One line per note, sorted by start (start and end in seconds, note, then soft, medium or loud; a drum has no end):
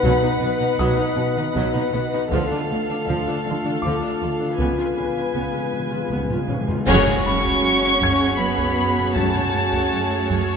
0.00 0.11 B1 medium
0.00 0.11 B2 medium
0.00 0.26 B2 medium
0.00 0.21 F#3 medium
0.00 2.28 B3 medium
0.00 2.27 D#4 medium
0.00 2.27 B4 medium
0.00 2.31 B4 medium
0.00 2.27 D#5 medium
0.00 2.27 F#5 medium
0.00 taiko medium
0.22 0.30 B2 medium
0.22 0.30 D#4 medium
0.41 0.49 B1 medium
0.41 0.64 B2 medium
0.41 0.49 B2 medium
0.41 0.50 B3 medium
0.60 0.68 B2 medium
0.60 0.68 D#4 medium
0.79 0.87 B1 medium
0.79 0.87 B2 medium
0.79 1.02 B2 medium
0.79 0.97 F#3 medium
0.79 3.03 D#6 medium
0.79 taiko medium
0.98 1.06 B2 medium
0.98 1.06 D#4 medium
1.18 1.41 B2 medium
1.36 1.44 B2 medium
1.36 1.44 D#4 medium
1.36 taiko mid soft
1.55 1.63 B1 medium
1.55 1.63 B2 medium
1.55 1.79 B2 medium
1.55 1.73 F#3 medium
1.55 taiko medium
1.75 1.82 B2 medium
1.75 1.82 D#4 medium
1.93 2.01 B1 medium
1.93 2.01 B2 medium
1.93 2.16 B2 medium
1.93 2.01 B3 medium
2.13 2.20 B2 medium
2.13 2.21 D#4 medium
2.31 2.39 D2 medium
2.31 2.54 D3 medium
2.31 2.39 D3 medium
2.31 2.50 F3 medium
2.31 4.55 A3 medium
2.31 4.59 D4 medium
2.31 6.51 F4 medium
2.31 4.55 A4 medium
2.31 4.59 A4 medium
2.31 4.55 F5 medium
2.31 6.87 F5 medium
2.31 taiko medium
2.51 2.58 D3 medium
2.51 2.58 D4 soft
2.69 2.77 D2 soft
2.69 2.77 D3 medium
2.69 2.93 D3 soft
2.69 2.78 A3 soft
2.89 2.96 D3 medium
2.89 2.96 D4 soft
3.07 3.15 D2 medium
3.07 3.30 D3 soft
3.07 3.15 D3 medium
3.07 3.25 F3 medium
3.07 taiko medium
3.26 3.34 D3 medium
3.26 3.34 D4 medium
3.46 3.69 D3 medium
3.64 3.72 D3 soft
3.64 3.72 D4 soft
3.64 taiko mid soft
3.82 3.91 D2 medium
3.82 3.91 D3 medium
3.82 4.06 D3 soft
3.82 4.01 F3 medium
3.82 6.07 D6 medium
3.82 taiko medium
4.02 4.10 D3 soft
4.02 4.09 D4 soft
4.21 4.29 D2 soft
4.21 4.44 D3 soft
4.21 4.29 D3 soft
4.21 4.29 A3 soft
4.39 4.48 D3 soft
4.39 4.47 D4 soft
4.58 4.66 C#2 medium
4.58 4.82 C#3 medium
4.58 4.65 C#3 soft
4.58 4.67 C#3 medium
4.58 4.76 B3 medium
4.58 6.51 B3 medium
4.58 6.88 G#4 soft
4.58 6.67 B4 soft
4.58 6.87 B4 soft
4.58 6.67 G#5 soft
4.58 taiko medium
4.73 4.79 C#3 soft
4.73 4.85 F4 soft
4.78 4.86 C#3 soft
4.88 4.95 C#3 soft
4.96 5.04 C#2 soft
4.96 5.03 C#3 soft
4.96 5.20 C#3 soft
4.96 5.05 C#3 soft
4.96 5.04 C#4 soft
5.04 5.10 C#3 soft
5.11 5.17 C#3 soft
5.16 5.24 C#3 soft
5.16 5.25 C#3 soft
5.16 5.23 F4 soft
5.26 5.33 C#3 soft
5.34 5.42 C#2 medium
5.34 5.40 C#3 soft
5.34 5.42 C#3 soft
5.34 5.58 C#3 soft
5.34 5.53 B3 soft
5.34 taiko medium
5.41 5.48 C#3 soft
5.49 5.56 C#3 soft
5.53 5.62 C#3 soft
5.53 5.63 C#3 soft
5.53 5.61 F4 soft
5.64 5.71 C#3 soft
5.72 5.78 C#3 soft
5.72 5.96 C#3 medium
5.80 5.85 C#3 medium
5.87 5.93 C#3 medium
5.92 6.00 C#3 soft
5.92 6.01 C#3 medium
5.92 6.00 F4 soft
5.92 taiko mid soft
6.02 6.08 C#3 medium
6.09 6.18 C#2 soft
6.09 6.16 C#3 medium
6.09 6.34 C#3 soft
6.09 6.19 C#3 medium
6.09 6.29 B3 soft
6.09 taiko medium
6.17 6.23 C#3 medium
6.24 6.30 C#3 medium
6.30 6.38 C#3 soft
6.30 6.37 C#3 medium
6.30 6.37 F4 soft
6.30 taiko low-mid medium
6.38 6.45 C#3 medium
6.46 6.56 C#2 soft
6.46 6.52 C#3 medium
6.46 6.56 C#3 soft
6.46 6.72 C#3 soft
6.46 6.57 C#4 soft
6.46 taiko low-mid medium
6.53 6.60 C#3 medium
6.61 6.67 C#3 medium
6.67 6.75 C#3 soft
6.67 6.74 C#3 medium
6.67 6.76 F4 soft
6.67 taiko low medium
6.76 6.83 C#3 medium
6.86 7.96 F#2 loud
6.86 10.57 F#2 medium
6.86 7.10 F#2 medium
6.86 7.22 C#4 medium
6.86 10.57 C#4 medium
6.86 7.22 F#4 medium
6.86 10.57 F#4 medium
6.86 10.57 G#4 medium
6.86 10.57 C#5 medium
6.86 10.57 F#5 medium
6.86 concert bass drum medium
6.86 taiko loud
6.86 crash medium
7.07 taiko low-mid soft
7.25 7.48 F#2 medium
7.25 8.35 C#4 medium
7.25 9.49 B5 soft
7.25 8.35 C#6 loud
7.45 taiko medium
7.63 7.86 F#2 medium
8.01 8.24 F#2 medium
8.01 10.26 G#6 medium
8.01 taiko medium
8.39 8.61 F#3 medium
8.39 9.15 B3 medium
8.39 9.15 B5 medium
8.58 taiko medium
8.77 9.00 F#2 medium
8.96 taiko low-mid soft
9.15 9.38 F#2 medium
9.15 10.57 A3 medium
9.15 9.43 C#4 medium
9.15 9.43 F#4 medium
9.15 10.57 A5 medium
9.15 taiko medium
9.35 taiko low-mid medium
9.53 9.76 F#2 medium
9.72 taiko medium
9.92 10.14 F#2 medium
10.29 10.52 F#2 medium
10.29 taiko medium